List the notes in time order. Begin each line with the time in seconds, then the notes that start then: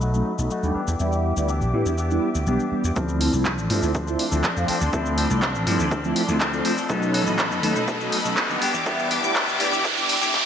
Already playing: B1 A4 D#5 B5
0.01 F#3 A3 D#4 F#4, cabasa
0.14 F#3 A3 C#4 D#4, cabasa
0.38 B1 F#3 A3 C#4 D#4, cabasa
0.50 F#3 A3 D#4 F#4, cabasa
0.63 D#2 G3 B3 D4 G4, cabasa
0.75 E3 B3 D4 G4 E5 D6, muted slap bass stroke
0.88 E2, cabasa
0.99 E2 G3 B3 D4 E4, cabasa
1.12 cabasa
1.37 D2 G3 B3 D4 E4, cabasa
1.48 E3 B3 D4 G4, cabasa
1.61 B1, cabasa
1.73 A2 G3 B3 D4 E4
1.86 E2, cabasa
1.97 E3 B3 D4 G4, cabasa
2.10 G3 B3 D4 E4, cabasa
2.35 D2, cabasa
2.46 B1 E3 G3 B3 D4 G4, cabasa
2.60 cabasa
2.71 G3 B3 D4 G4, muted slap bass stroke
2.84 E2, cabasa
2.96 D2 F3 A3 C4 D4 E4 A4 D5 C6, kick, riser, cabasa
3.09 cabasa
3.20 F3 C4 D4 A4, open hi-hat
3.33 C2 F3 A3 C4 D4 E4 A4, cabasa
3.45 F3 C4 D4 A4, kick, clap, cabasa
3.58 A1, cabasa
3.69 G2 F3 A3 C4 D4 E4 A4, open hi-hat
3.82 D2 C4 D4 A4, cabasa
3.94 F3 C4 D4, kick, cabasa
4.06 F3 A3 C4 D4 E4 A4, cabasa
4.19 open hi-hat
4.32 D2 F3 A3 C4 D4 E4 A4, cabasa
4.44 F3 C4 D4 A4, kick, clap, cabasa
4.56 F2 F3 A3 C4 F4, cabasa
4.68 F3 C4 D4 A4, muted slap bass stroke, open hi-hat
4.81 D2 C4 D4 A4, cabasa
4.93 D2 F3 A3 C4 D4 E4 A4, kick, cabasa
5.06 cabasa
5.17 F3 C4 D4 A4, open hi-hat
5.30 C2 F3 A3 C4 D4 E4 A4, cabasa
5.42 F3 C4 D4 A4, kick, clap, cabasa
5.55 A1, cabasa
5.66 G2 F3 A3 C4 D4 E4 A4, open hi-hat
5.79 D2 C4 D4 A4, cabasa
5.91 F3 C4 D4 A4, kick, cabasa
6.03 F3 A3 C4 D4 E4 A4, cabasa
6.16 open hi-hat
6.28 D2 F3 A3 C4 D4 E4 A4, cabasa
6.40 F3 C4 D4 A4, kick, clap, cabasa
6.52 F3 A3 C4 F4, cabasa
6.65 F3 C4 D4 A4, open hi-hat
6.77 C4 D4 A4, cabasa
6.89 B1 F#3 A3 B3 C#4 D#4 A4 D#5 B5, kick, cabasa
7.02 cabasa
7.13 F#3 B3 D#4 A4, open hi-hat
7.26 A1 F#3 A3 B3 C#4 D#4 A4, cabasa
7.38 F#3 B3 D#4 A4, kick, clap, cabasa
7.51 F#2, cabasa
7.62 D#2 F#3 A3 B3 C#4 D#4 A4, open hi-hat
7.75 B1 B3 D#4 A4, cabasa
7.87 F#3 B3 D#4 A4, kick, cabasa
8.00 F#3 A3 B3 C#4 D#4 A4, cabasa
8.12 open hi-hat
8.24 B1 F#3 A3 B3 C#4 D#4 A4, cabasa
8.36 F#3 B3 D#4 A4, kick, clap, cabasa
8.49 D#2 G3 B3 D4 G4, cabasa
8.61 B3 D4 G4 E5 D6, open hi-hat
8.74 E2 D4 G4, cabasa
8.86 G3 B3 D4 E4 G4, kick, cabasa
8.99 cabasa
9.10 B3 D4 G4, open hi-hat
9.23 D2 G3 B3 D4 E4 G4, cabasa
9.35 B3 D4 G4, kick, clap, cabasa
9.48 B1, cabasa
9.59 A2 G3 B3 D4 E4 G4, open hi-hat
9.72 E2 D4 G4, cabasa
9.84 B3 D4 G4, kick, cabasa
9.97 G3 B3 D4 E4 G4, cabasa
10.09 open hi-hat
10.21 D2 G3 B3 D4 E4 G4, cabasa
10.34 snare